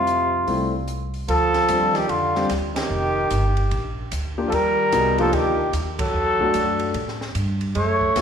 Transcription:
0.00 0.44 F2 medium
0.00 0.85 C3 medium
0.00 0.85 F4 medium
0.07 closed hi-hat soft
0.47 1.24 C2 medium
0.47 0.71 G3 medium
0.47 0.71 A3 soft
0.47 0.71 C4 soft
0.47 0.71 E4 medium
0.47 open hi-hat soft
0.88 closed hi-hat soft
1.14 open hi-hat soft
1.28 1.68 D2 medium
1.28 1.95 F3 medium
1.28 1.98 A4 loud
1.28 ride medium
1.54 snare soft
1.54 ride soft
1.68 2.08 D#2 medium
1.68 1.93 G3 soft
1.68 1.93 C4 soft
1.68 1.93 D4 soft
1.68 1.93 F4 soft
1.68 hi-hat pedal soft
1.68 ride medium
1.94 2.10 D#3 medium
1.94 2.11 G4 medium
1.94 snare soft
1.94 ride soft
2.08 2.49 F2 medium
2.08 2.49 D3 medium
2.08 2.50 F4 medium
2.08 ride medium
2.35 2.49 G3 medium
2.35 2.49 C4 medium
2.35 2.49 D4 medium
2.35 2.49 G4 medium
2.35 snare soft
2.49 2.89 D2 medium
2.49 snare soft
2.49 hi-hat pedal soft
2.49 ride medium
2.74 3.66 D#3 medium
2.74 3.93 G4 medium
2.74 snare medium
2.74 ride medium
2.90 3.30 F1 medium
3.30 3.70 G1 medium
3.30 hi-hat pedal medium
3.30 ride medium
3.57 ride soft
3.71 4.10 A#1 medium
3.71 ride soft
4.12 4.51 D2 medium
4.12 hi-hat pedal medium
4.12 ride medium
4.38 4.51 A#3 medium
4.38 4.51 D4 medium
4.38 4.51 F4 medium
4.38 4.51 G4 medium
4.47 4.54 F3 medium
4.47 4.56 A4 medium
4.52 4.91 D#2 medium
4.52 5.19 G3 medium
4.52 5.19 A#4 loud
4.52 ride medium
4.92 5.32 C2 medium
4.92 5.16 B3 medium
4.92 5.16 D#4 medium
4.92 5.16 F#4 medium
4.92 5.16 G#4 medium
4.92 hi-hat pedal medium
4.92 ride medium
5.18 5.35 F3 medium
5.18 5.54 A#3 medium
5.18 5.54 D4 soft
5.18 5.54 F4 medium
5.18 5.54 G4 medium
5.18 5.36 A4 medium
5.18 ride soft
5.33 5.72 D2 medium
5.33 5.74 D#3 medium
5.33 5.74 G4 medium
5.33 ride medium
5.73 6.12 D#2 medium
5.73 hi-hat pedal medium
5.73 ride medium
5.99 6.91 F#3 medium
5.99 7.17 A4 medium
5.99 kick medium
5.99 ride medium
6.14 6.53 E2 medium
6.39 6.92 A3 medium
6.39 6.92 D4 medium
6.39 6.92 F#4 medium
6.39 6.92 A4 medium
6.39 kick soft
6.54 6.93 F#2 medium
6.54 hi-hat pedal soft
6.54 ride medium
6.79 ride soft
6.94 7.34 A2 medium
6.94 ride medium
7.08 snare soft
7.21 snare soft
7.35 7.74 G2 medium
7.35 hi-hat pedal soft
7.35 ride medium
7.61 ride soft
7.75 8.15 F#2 medium
7.75 8.21 A3 medium
7.75 8.21 C#5 medium
7.75 ride medium
8.01 kick medium
8.16 8.21 E2 medium
8.16 8.21 B3 medium
8.16 8.21 E4 medium
8.16 8.21 F#4 medium
8.16 8.21 A4 medium
8.16 snare soft
8.16 hi-hat pedal medium
8.16 ride medium

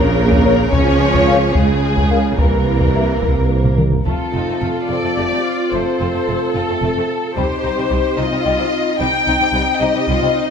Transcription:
0.00 0.62 A#1 medium
0.00 0.63 A#1 medium
0.00 0.73 C#3 medium
0.00 0.71 A#3 medium
0.00 0.71 A#4 medium
0.00 0.72 A#4 medium
0.31 taiko medium
0.45 0.54 A#4 medium
0.45 0.54 C#5 medium
0.72 1.45 C#2 medium
0.72 1.46 C#2 medium
0.72 1.55 F3 medium
0.72 1.53 C#4 medium
0.72 1.53 C#5 medium
0.72 1.55 C#5 medium
0.72 taiko medium
1.14 taiko medium
1.27 1.37 A#4 medium
1.27 1.37 F5 soft
1.54 2.29 C#2 soft
1.54 2.29 C#2 medium
1.54 2.37 C#3 medium
1.54 2.39 G#3 medium
1.54 2.38 G#4 medium
1.54 2.39 G#4 medium
1.54 taiko medium
1.97 taiko medium
2.09 2.20 A#4 soft
2.09 2.20 F5 soft
2.38 3.13 C2 soft
2.38 3.79 E3 soft
2.38 3.76 A#3 medium
2.38 3.76 A#4 soft
2.38 3.79 A#4 medium
2.38 taiko medium
2.81 taiko medium
2.95 3.05 G4 soft
2.95 3.05 E5 soft
3.22 3.97 C2 soft
3.22 3.48 A#4 soft
3.22 taiko medium
3.50 3.78 C5 soft
3.64 taiko low-mid medium
3.77 4.06 A#4 soft
3.77 taiko mid medium
3.92 taiko low medium
4.06 4.12 F1 soft
4.06 4.12 F2 soft
4.06 4.13 A3 soft
4.06 7.33 C4 soft
4.06 4.33 F4 soft
4.06 7.33 F4 soft
4.06 4.86 A4 soft
4.06 taiko soft
4.34 4.40 F1 soft
4.34 4.40 F2 soft
4.34 4.41 C4 soft
4.34 4.62 D#4 soft
4.34 4.41 F4 soft
4.48 4.54 F2 soft
4.48 4.55 A3 soft
4.48 4.55 C4 soft
4.62 4.68 F1 soft
4.62 4.67 F2 soft
4.62 4.69 A3 soft
4.62 4.91 F4 soft
4.90 4.96 F1 soft
4.90 4.96 F2 soft
4.90 4.97 C4 soft
4.90 4.97 F4 soft
4.90 5.18 A4 soft
4.90 5.73 D5 medium
5.03 5.09 F2 soft
5.03 5.10 A3 soft
5.03 5.09 C4 soft
5.17 5.24 F1 soft
5.17 5.23 F2 soft
5.17 5.24 A3 soft
5.17 5.45 G4 soft
5.31 5.36 F2 soft
5.31 5.38 A3 soft
5.31 5.38 C4 soft
5.45 5.72 F4 soft
5.72 5.79 F1 soft
5.72 5.78 F2 soft
5.72 5.80 A3 soft
5.72 7.37 A4 medium
5.72 6.55 C5 soft
6.00 6.06 F1 soft
6.00 6.06 F2 soft
6.00 6.07 C4 soft
6.00 6.07 F4 soft
6.14 6.20 F2 soft
6.14 6.20 A3 soft
6.14 6.20 C4 soft
6.28 6.34 F1 soft
6.28 6.34 F2 soft
6.28 6.34 A3 soft
6.55 6.61 F1 soft
6.55 6.61 F2 soft
6.55 6.62 C4 soft
6.55 6.61 F4 soft
6.55 7.35 A4 medium
6.69 6.75 F2 soft
6.69 6.75 A3 soft
6.69 6.75 C4 soft
6.83 6.88 F1 soft
6.83 6.88 F2 soft
6.83 6.88 A3 medium
6.96 7.02 F2 soft
6.96 7.02 A3 soft
6.96 7.02 C4 soft
7.37 7.42 C2 soft
7.37 7.42 C3 medium
7.37 7.43 G3 soft
7.37 10.47 C4 soft
7.37 10.47 D#4 soft
7.37 8.17 G4 soft
7.37 8.17 C5 medium
7.37 taiko soft
7.64 7.70 C2 soft
7.64 7.70 C3 soft
7.64 7.70 C4 soft
7.64 7.69 D#4 soft
7.78 7.84 C3 soft
7.78 7.84 G3 soft
7.78 7.84 C4 soft
7.91 7.97 C2 medium
7.91 7.97 C3 medium
7.91 7.96 G3 soft
8.18 8.24 C2 soft
8.18 8.24 C3 soft
8.18 8.23 C4 soft
8.18 8.23 D#4 soft
8.18 9.00 F4 medium
8.18 9.00 D#5 medium
8.32 8.38 C3 soft
8.32 8.38 G3 soft
8.32 8.38 C4 soft
8.46 8.51 C2 soft
8.46 8.51 C3 medium
8.46 8.52 G3 medium
8.59 8.65 C3 soft
8.59 8.65 G3 soft
8.59 8.65 C4 soft
8.99 9.06 C2 medium
8.99 9.05 C3 medium
8.99 9.06 G3 medium
8.99 9.80 D#4 soft
8.99 9.80 G5 medium
9.26 9.33 C2 soft
9.26 9.32 C3 soft
9.26 9.33 C4 soft
9.26 9.33 D#4 soft
9.40 9.45 C3 soft
9.40 9.46 G3 soft
9.40 9.47 C4 soft
9.53 9.59 C2 medium
9.53 9.58 C3 medium
9.53 9.60 G3 medium
9.80 9.86 C2 soft
9.80 9.86 C3 soft
9.80 9.87 C4 soft
9.80 9.87 D#4 soft
9.80 10.09 G4 medium
9.80 10.50 D#5 medium
9.94 10.00 C3 soft
9.94 10.00 G3 soft
9.94 10.00 C4 soft
10.08 10.14 C2 medium
10.08 10.13 C3 medium
10.08 10.15 G3 medium
10.08 10.36 F4 medium
10.22 10.28 C3 soft
10.22 10.29 G3 soft
10.22 10.28 C4 soft
10.36 10.50 D#4 medium

